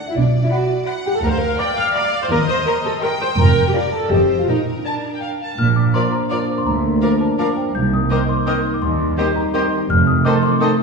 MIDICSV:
0, 0, Header, 1, 12, 480
1, 0, Start_track
1, 0, Key_signature, -2, "major"
1, 0, Tempo, 357995
1, 221, Time_signature, 3, 2, 24, 8
1, 4542, Tempo, 363636
1, 10782, Tempo, 356718
1, 14433, End_track
2, 0, Start_track
2, 0, Title_t, "Flute section"
2, 0, Program_c, 0, 73
2, 7915, Note_on_c, 0, 82, 48
2, 8001, Note_off_c, 0, 82, 0
2, 8401, Note_on_c, 0, 82, 42
2, 8487, Note_off_c, 0, 82, 0
2, 9350, Note_on_c, 0, 82, 45
2, 9435, Note_off_c, 0, 82, 0
2, 9821, Note_on_c, 0, 82, 44
2, 9908, Note_off_c, 0, 82, 0
2, 10773, Note_on_c, 0, 84, 52
2, 10860, Note_off_c, 0, 84, 0
2, 11259, Note_on_c, 0, 84, 41
2, 11345, Note_off_c, 0, 84, 0
2, 12218, Note_on_c, 0, 84, 51
2, 12305, Note_off_c, 0, 84, 0
2, 12708, Note_on_c, 0, 84, 45
2, 12794, Note_off_c, 0, 84, 0
2, 13665, Note_on_c, 0, 84, 55
2, 13751, Note_off_c, 0, 84, 0
2, 14135, Note_on_c, 0, 84, 45
2, 14222, Note_off_c, 0, 84, 0
2, 14433, End_track
3, 0, Start_track
3, 0, Title_t, "Celesta"
3, 0, Program_c, 1, 8
3, 97, Note_on_c, 1, 76, 43
3, 210, Note_off_c, 1, 76, 0
3, 215, Note_on_c, 1, 74, 52
3, 550, Note_off_c, 1, 74, 0
3, 579, Note_on_c, 1, 76, 53
3, 690, Note_off_c, 1, 76, 0
3, 699, Note_on_c, 1, 78, 54
3, 921, Note_off_c, 1, 78, 0
3, 1421, Note_on_c, 1, 79, 57
3, 1529, Note_off_c, 1, 79, 0
3, 1538, Note_on_c, 1, 81, 50
3, 1647, Note_off_c, 1, 81, 0
3, 1658, Note_on_c, 1, 82, 56
3, 2102, Note_off_c, 1, 82, 0
3, 2131, Note_on_c, 1, 86, 78
3, 2355, Note_off_c, 1, 86, 0
3, 2382, Note_on_c, 1, 89, 75
3, 2601, Note_off_c, 1, 89, 0
3, 2621, Note_on_c, 1, 86, 64
3, 2954, Note_off_c, 1, 86, 0
3, 2984, Note_on_c, 1, 84, 56
3, 3092, Note_off_c, 1, 84, 0
3, 3104, Note_on_c, 1, 82, 72
3, 3324, Note_off_c, 1, 82, 0
3, 3354, Note_on_c, 1, 84, 76
3, 3570, Note_off_c, 1, 84, 0
3, 3597, Note_on_c, 1, 82, 72
3, 3811, Note_off_c, 1, 82, 0
3, 3828, Note_on_c, 1, 81, 70
3, 4046, Note_off_c, 1, 81, 0
3, 4079, Note_on_c, 1, 82, 52
3, 4293, Note_off_c, 1, 82, 0
3, 4307, Note_on_c, 1, 84, 67
3, 4529, Note_off_c, 1, 84, 0
3, 4540, Note_on_c, 1, 82, 71
3, 4875, Note_off_c, 1, 82, 0
3, 4902, Note_on_c, 1, 79, 59
3, 5008, Note_on_c, 1, 77, 49
3, 5012, Note_off_c, 1, 79, 0
3, 5236, Note_off_c, 1, 77, 0
3, 5249, Note_on_c, 1, 81, 56
3, 5477, Note_off_c, 1, 81, 0
3, 5492, Note_on_c, 1, 79, 46
3, 5834, Note_off_c, 1, 79, 0
3, 5865, Note_on_c, 1, 77, 40
3, 5978, Note_off_c, 1, 77, 0
3, 5993, Note_on_c, 1, 75, 47
3, 6443, Note_off_c, 1, 75, 0
3, 6470, Note_on_c, 1, 74, 38
3, 6924, Note_off_c, 1, 74, 0
3, 6947, Note_on_c, 1, 79, 53
3, 7178, Note_off_c, 1, 79, 0
3, 7212, Note_on_c, 1, 77, 38
3, 7432, Note_off_c, 1, 77, 0
3, 7442, Note_on_c, 1, 89, 76
3, 7664, Note_off_c, 1, 89, 0
3, 7674, Note_on_c, 1, 86, 67
3, 7899, Note_off_c, 1, 86, 0
3, 7913, Note_on_c, 1, 84, 78
3, 8138, Note_off_c, 1, 84, 0
3, 8151, Note_on_c, 1, 82, 71
3, 8376, Note_off_c, 1, 82, 0
3, 8400, Note_on_c, 1, 86, 65
3, 8731, Note_off_c, 1, 86, 0
3, 8756, Note_on_c, 1, 84, 69
3, 8866, Note_off_c, 1, 84, 0
3, 8868, Note_on_c, 1, 82, 70
3, 9535, Note_off_c, 1, 82, 0
3, 9587, Note_on_c, 1, 81, 66
3, 9809, Note_off_c, 1, 81, 0
3, 9826, Note_on_c, 1, 81, 72
3, 10047, Note_off_c, 1, 81, 0
3, 10058, Note_on_c, 1, 79, 53
3, 10283, Note_off_c, 1, 79, 0
3, 10300, Note_on_c, 1, 91, 78
3, 10524, Note_off_c, 1, 91, 0
3, 10545, Note_on_c, 1, 87, 69
3, 10765, Note_off_c, 1, 87, 0
3, 10783, Note_on_c, 1, 86, 70
3, 11005, Note_off_c, 1, 86, 0
3, 11019, Note_on_c, 1, 84, 73
3, 11243, Note_off_c, 1, 84, 0
3, 11257, Note_on_c, 1, 87, 68
3, 11593, Note_off_c, 1, 87, 0
3, 11623, Note_on_c, 1, 86, 66
3, 11731, Note_on_c, 1, 84, 74
3, 11733, Note_off_c, 1, 86, 0
3, 12407, Note_off_c, 1, 84, 0
3, 12455, Note_on_c, 1, 82, 68
3, 12682, Note_off_c, 1, 82, 0
3, 12700, Note_on_c, 1, 84, 70
3, 12924, Note_off_c, 1, 84, 0
3, 13184, Note_on_c, 1, 89, 86
3, 13405, Note_off_c, 1, 89, 0
3, 13413, Note_on_c, 1, 87, 73
3, 13639, Note_off_c, 1, 87, 0
3, 13652, Note_on_c, 1, 86, 87
3, 13879, Note_off_c, 1, 86, 0
3, 13897, Note_on_c, 1, 84, 85
3, 14122, Note_off_c, 1, 84, 0
3, 14140, Note_on_c, 1, 87, 68
3, 14433, Note_off_c, 1, 87, 0
3, 14433, End_track
4, 0, Start_track
4, 0, Title_t, "Violin section"
4, 0, Program_c, 2, 48
4, 693, Note_on_c, 2, 83, 49
4, 702, Note_on_c, 2, 78, 55
4, 1051, Note_off_c, 2, 83, 0
4, 1055, Note_off_c, 2, 78, 0
4, 1168, Note_on_c, 2, 78, 59
4, 1171, Note_on_c, 2, 83, 59
4, 1527, Note_off_c, 2, 78, 0
4, 1528, Note_off_c, 2, 83, 0
4, 2131, Note_on_c, 2, 77, 65
4, 2131, Note_on_c, 2, 82, 62
4, 2489, Note_off_c, 2, 77, 0
4, 2489, Note_off_c, 2, 82, 0
4, 2608, Note_on_c, 2, 77, 68
4, 2614, Note_on_c, 2, 82, 68
4, 2969, Note_off_c, 2, 77, 0
4, 2972, Note_off_c, 2, 82, 0
4, 3580, Note_on_c, 2, 75, 67
4, 3586, Note_on_c, 2, 84, 66
4, 3936, Note_off_c, 2, 75, 0
4, 3939, Note_off_c, 2, 84, 0
4, 4062, Note_on_c, 2, 84, 62
4, 4064, Note_on_c, 2, 75, 61
4, 4419, Note_off_c, 2, 84, 0
4, 4420, Note_off_c, 2, 75, 0
4, 5020, Note_on_c, 2, 74, 59
4, 5022, Note_on_c, 2, 82, 59
4, 5376, Note_off_c, 2, 74, 0
4, 5377, Note_off_c, 2, 82, 0
4, 5508, Note_on_c, 2, 75, 56
4, 5514, Note_on_c, 2, 81, 50
4, 5866, Note_off_c, 2, 75, 0
4, 5869, Note_off_c, 2, 81, 0
4, 6476, Note_on_c, 2, 81, 56
4, 6582, Note_off_c, 2, 81, 0
4, 6854, Note_on_c, 2, 79, 35
4, 6962, Note_on_c, 2, 77, 45
4, 6965, Note_off_c, 2, 79, 0
4, 7059, Note_off_c, 2, 77, 0
4, 7223, Note_on_c, 2, 81, 41
4, 7449, Note_off_c, 2, 81, 0
4, 7928, Note_on_c, 2, 74, 51
4, 8033, Note_off_c, 2, 74, 0
4, 8391, Note_on_c, 2, 74, 55
4, 8496, Note_off_c, 2, 74, 0
4, 9349, Note_on_c, 2, 70, 45
4, 9455, Note_off_c, 2, 70, 0
4, 9821, Note_on_c, 2, 70, 46
4, 9926, Note_off_c, 2, 70, 0
4, 10775, Note_on_c, 2, 70, 48
4, 10882, Note_off_c, 2, 70, 0
4, 11250, Note_on_c, 2, 70, 53
4, 11358, Note_off_c, 2, 70, 0
4, 12215, Note_on_c, 2, 67, 54
4, 12322, Note_off_c, 2, 67, 0
4, 12700, Note_on_c, 2, 67, 51
4, 12808, Note_off_c, 2, 67, 0
4, 13672, Note_on_c, 2, 69, 58
4, 13780, Note_off_c, 2, 69, 0
4, 14142, Note_on_c, 2, 69, 57
4, 14250, Note_off_c, 2, 69, 0
4, 14433, End_track
5, 0, Start_track
5, 0, Title_t, "Violin section"
5, 0, Program_c, 3, 48
5, 0, Note_on_c, 3, 78, 48
5, 212, Note_off_c, 3, 78, 0
5, 221, Note_on_c, 3, 74, 59
5, 1156, Note_off_c, 3, 74, 0
5, 1167, Note_on_c, 3, 78, 57
5, 1649, Note_off_c, 3, 78, 0
5, 1656, Note_on_c, 3, 77, 61
5, 2126, Note_on_c, 3, 79, 61
5, 2134, Note_off_c, 3, 77, 0
5, 2600, Note_off_c, 3, 79, 0
5, 2615, Note_on_c, 3, 77, 67
5, 3086, Note_off_c, 3, 77, 0
5, 3100, Note_on_c, 3, 75, 74
5, 4041, Note_off_c, 3, 75, 0
5, 4061, Note_on_c, 3, 79, 76
5, 5002, Note_off_c, 3, 79, 0
5, 5024, Note_on_c, 3, 74, 60
5, 5491, Note_off_c, 3, 74, 0
5, 5513, Note_on_c, 3, 72, 55
5, 5982, Note_on_c, 3, 70, 45
5, 5984, Note_off_c, 3, 72, 0
5, 7200, Note_off_c, 3, 70, 0
5, 7919, Note_on_c, 3, 77, 46
5, 8024, Note_off_c, 3, 77, 0
5, 8388, Note_on_c, 3, 77, 47
5, 8494, Note_off_c, 3, 77, 0
5, 9332, Note_on_c, 3, 77, 44
5, 9438, Note_off_c, 3, 77, 0
5, 9824, Note_on_c, 3, 77, 48
5, 9929, Note_off_c, 3, 77, 0
5, 10775, Note_on_c, 3, 75, 48
5, 10882, Note_off_c, 3, 75, 0
5, 11260, Note_on_c, 3, 75, 49
5, 11367, Note_off_c, 3, 75, 0
5, 12218, Note_on_c, 3, 75, 50
5, 12326, Note_off_c, 3, 75, 0
5, 12697, Note_on_c, 3, 75, 53
5, 12804, Note_off_c, 3, 75, 0
5, 13665, Note_on_c, 3, 75, 51
5, 13772, Note_off_c, 3, 75, 0
5, 14139, Note_on_c, 3, 75, 57
5, 14247, Note_off_c, 3, 75, 0
5, 14433, End_track
6, 0, Start_track
6, 0, Title_t, "Cor anglais"
6, 0, Program_c, 4, 69
6, 7925, Note_on_c, 4, 74, 52
6, 8096, Note_off_c, 4, 74, 0
6, 8403, Note_on_c, 4, 74, 42
6, 8573, Note_off_c, 4, 74, 0
6, 9352, Note_on_c, 4, 74, 49
6, 9523, Note_off_c, 4, 74, 0
6, 9826, Note_on_c, 4, 74, 46
6, 9998, Note_off_c, 4, 74, 0
6, 10772, Note_on_c, 4, 72, 50
6, 10946, Note_off_c, 4, 72, 0
6, 11249, Note_on_c, 4, 72, 48
6, 11425, Note_off_c, 4, 72, 0
6, 12205, Note_on_c, 4, 72, 51
6, 12382, Note_off_c, 4, 72, 0
6, 12698, Note_on_c, 4, 72, 53
6, 12872, Note_off_c, 4, 72, 0
6, 13656, Note_on_c, 4, 72, 57
6, 13830, Note_off_c, 4, 72, 0
6, 14141, Note_on_c, 4, 72, 47
6, 14315, Note_off_c, 4, 72, 0
6, 14433, End_track
7, 0, Start_track
7, 0, Title_t, "Clarinet"
7, 0, Program_c, 5, 71
7, 7930, Note_on_c, 5, 70, 43
7, 8099, Note_off_c, 5, 70, 0
7, 8410, Note_on_c, 5, 70, 40
7, 8578, Note_off_c, 5, 70, 0
7, 9348, Note_on_c, 5, 70, 48
7, 9520, Note_off_c, 5, 70, 0
7, 9831, Note_on_c, 5, 70, 47
7, 10001, Note_off_c, 5, 70, 0
7, 10781, Note_on_c, 5, 70, 49
7, 10954, Note_off_c, 5, 70, 0
7, 11265, Note_on_c, 5, 70, 48
7, 11437, Note_off_c, 5, 70, 0
7, 12221, Note_on_c, 5, 67, 46
7, 12395, Note_off_c, 5, 67, 0
7, 12696, Note_on_c, 5, 67, 48
7, 12870, Note_off_c, 5, 67, 0
7, 13656, Note_on_c, 5, 69, 55
7, 13829, Note_off_c, 5, 69, 0
7, 14136, Note_on_c, 5, 69, 56
7, 14311, Note_off_c, 5, 69, 0
7, 14433, End_track
8, 0, Start_track
8, 0, Title_t, "Viola section"
8, 0, Program_c, 6, 48
8, 118, Note_on_c, 6, 64, 63
8, 224, Note_on_c, 6, 62, 65
8, 227, Note_off_c, 6, 64, 0
8, 332, Note_off_c, 6, 62, 0
8, 599, Note_on_c, 6, 64, 53
8, 642, Note_off_c, 6, 64, 0
8, 699, Note_on_c, 6, 66, 59
8, 932, Note_off_c, 6, 66, 0
8, 1411, Note_on_c, 6, 67, 71
8, 1459, Note_off_c, 6, 67, 0
8, 1537, Note_on_c, 6, 69, 65
8, 1646, Note_on_c, 6, 70, 81
8, 1652, Note_off_c, 6, 69, 0
8, 1685, Note_off_c, 6, 70, 0
8, 1738, Note_on_c, 6, 72, 67
8, 1835, Note_off_c, 6, 72, 0
8, 1835, Note_on_c, 6, 70, 83
8, 2130, Note_on_c, 6, 74, 82
8, 2131, Note_off_c, 6, 70, 0
8, 2363, Note_on_c, 6, 77, 81
8, 2371, Note_off_c, 6, 74, 0
8, 2602, Note_on_c, 6, 74, 81
8, 2603, Note_off_c, 6, 77, 0
8, 2961, Note_off_c, 6, 74, 0
8, 2969, Note_on_c, 6, 72, 73
8, 3019, Note_off_c, 6, 72, 0
8, 3084, Note_on_c, 6, 70, 107
8, 3183, Note_off_c, 6, 70, 0
8, 3324, Note_on_c, 6, 72, 84
8, 3567, Note_off_c, 6, 72, 0
8, 3570, Note_on_c, 6, 70, 72
8, 3667, Note_off_c, 6, 70, 0
8, 3809, Note_on_c, 6, 69, 77
8, 3906, Note_off_c, 6, 69, 0
8, 4050, Note_on_c, 6, 70, 78
8, 4148, Note_off_c, 6, 70, 0
8, 4293, Note_on_c, 6, 72, 77
8, 4391, Note_off_c, 6, 72, 0
8, 4543, Note_on_c, 6, 70, 96
8, 4894, Note_off_c, 6, 70, 0
8, 4918, Note_on_c, 6, 67, 66
8, 4962, Note_off_c, 6, 67, 0
8, 5017, Note_on_c, 6, 65, 59
8, 5113, Note_off_c, 6, 65, 0
8, 5258, Note_on_c, 6, 69, 72
8, 5494, Note_off_c, 6, 69, 0
8, 5503, Note_on_c, 6, 67, 61
8, 5866, Note_off_c, 6, 67, 0
8, 5873, Note_on_c, 6, 65, 61
8, 5979, Note_on_c, 6, 63, 76
8, 5991, Note_off_c, 6, 65, 0
8, 6085, Note_off_c, 6, 63, 0
8, 6376, Note_on_c, 6, 63, 26
8, 6469, Note_on_c, 6, 62, 42
8, 6472, Note_off_c, 6, 63, 0
8, 6958, Note_off_c, 6, 62, 0
8, 7922, Note_on_c, 6, 70, 45
8, 8027, Note_off_c, 6, 70, 0
8, 8392, Note_on_c, 6, 70, 48
8, 8498, Note_off_c, 6, 70, 0
8, 9347, Note_on_c, 6, 65, 50
8, 9453, Note_off_c, 6, 65, 0
8, 9826, Note_on_c, 6, 65, 42
8, 9931, Note_off_c, 6, 65, 0
8, 10771, Note_on_c, 6, 60, 48
8, 10879, Note_off_c, 6, 60, 0
8, 11245, Note_on_c, 6, 60, 47
8, 11353, Note_off_c, 6, 60, 0
8, 12224, Note_on_c, 6, 60, 49
8, 12331, Note_off_c, 6, 60, 0
8, 12706, Note_on_c, 6, 60, 58
8, 12813, Note_off_c, 6, 60, 0
8, 13663, Note_on_c, 6, 60, 54
8, 13771, Note_off_c, 6, 60, 0
8, 14138, Note_on_c, 6, 60, 55
8, 14245, Note_off_c, 6, 60, 0
8, 14433, End_track
9, 0, Start_track
9, 0, Title_t, "French horn section"
9, 0, Program_c, 7, 60
9, 7442, Note_on_c, 7, 58, 58
9, 7446, Note_on_c, 7, 62, 60
9, 10250, Note_off_c, 7, 58, 0
9, 10252, Note_off_c, 7, 62, 0
9, 10291, Note_on_c, 7, 58, 51
9, 10294, Note_on_c, 7, 63, 52
9, 11705, Note_off_c, 7, 58, 0
9, 11731, Note_on_c, 7, 55, 57
9, 13123, Note_off_c, 7, 63, 0
9, 13177, Note_off_c, 7, 55, 0
9, 13178, Note_on_c, 7, 63, 56
9, 13184, Note_on_c, 7, 57, 64
9, 14433, Note_off_c, 7, 57, 0
9, 14433, Note_off_c, 7, 63, 0
9, 14433, End_track
10, 0, Start_track
10, 0, Title_t, "Bassoon"
10, 0, Program_c, 8, 70
10, 7927, Note_on_c, 8, 53, 48
10, 8097, Note_off_c, 8, 53, 0
10, 8405, Note_on_c, 8, 53, 38
10, 8575, Note_off_c, 8, 53, 0
10, 9350, Note_on_c, 8, 53, 47
10, 9521, Note_off_c, 8, 53, 0
10, 9825, Note_on_c, 8, 53, 37
10, 9997, Note_off_c, 8, 53, 0
10, 10783, Note_on_c, 8, 51, 41
10, 10955, Note_off_c, 8, 51, 0
10, 11259, Note_on_c, 8, 51, 40
10, 11432, Note_off_c, 8, 51, 0
10, 12222, Note_on_c, 8, 51, 48
10, 12396, Note_off_c, 8, 51, 0
10, 12699, Note_on_c, 8, 51, 46
10, 12873, Note_off_c, 8, 51, 0
10, 13659, Note_on_c, 8, 51, 55
10, 13832, Note_off_c, 8, 51, 0
10, 14141, Note_on_c, 8, 51, 47
10, 14315, Note_off_c, 8, 51, 0
10, 14433, End_track
11, 0, Start_track
11, 0, Title_t, "Cello section"
11, 0, Program_c, 10, 48
11, 208, Note_on_c, 10, 47, 56
11, 591, Note_off_c, 10, 47, 0
11, 1648, Note_on_c, 10, 38, 68
11, 2029, Note_off_c, 10, 38, 0
11, 3098, Note_on_c, 10, 39, 64
11, 3478, Note_off_c, 10, 39, 0
11, 4539, Note_on_c, 10, 41, 67
11, 4918, Note_off_c, 10, 41, 0
11, 5498, Note_on_c, 10, 41, 65
11, 5883, Note_off_c, 10, 41, 0
11, 5983, Note_on_c, 10, 46, 51
11, 6370, Note_off_c, 10, 46, 0
11, 7438, Note_on_c, 10, 46, 62
11, 7838, Note_off_c, 10, 46, 0
11, 8870, Note_on_c, 10, 38, 57
11, 9268, Note_off_c, 10, 38, 0
11, 10303, Note_on_c, 10, 36, 55
11, 10701, Note_off_c, 10, 36, 0
11, 11742, Note_on_c, 10, 39, 59
11, 12141, Note_off_c, 10, 39, 0
11, 13189, Note_on_c, 10, 41, 62
11, 13584, Note_off_c, 10, 41, 0
11, 14433, End_track
12, 0, Start_track
12, 0, Title_t, "Double bass section"
12, 0, Program_c, 11, 48
12, 214, Note_on_c, 11, 35, 60
12, 594, Note_off_c, 11, 35, 0
12, 1650, Note_on_c, 11, 38, 65
12, 2031, Note_off_c, 11, 38, 0
12, 3091, Note_on_c, 11, 39, 69
12, 3474, Note_off_c, 11, 39, 0
12, 4539, Note_on_c, 11, 29, 70
12, 4919, Note_off_c, 11, 29, 0
12, 5498, Note_on_c, 11, 29, 61
12, 5883, Note_off_c, 11, 29, 0
12, 5981, Note_on_c, 11, 34, 51
12, 6368, Note_off_c, 11, 34, 0
12, 7442, Note_on_c, 11, 34, 58
12, 7840, Note_off_c, 11, 34, 0
12, 8865, Note_on_c, 11, 38, 55
12, 9266, Note_off_c, 11, 38, 0
12, 10298, Note_on_c, 11, 36, 56
12, 10698, Note_off_c, 11, 36, 0
12, 11734, Note_on_c, 11, 39, 60
12, 12138, Note_off_c, 11, 39, 0
12, 13178, Note_on_c, 11, 29, 66
12, 13578, Note_off_c, 11, 29, 0
12, 14433, End_track
0, 0, End_of_file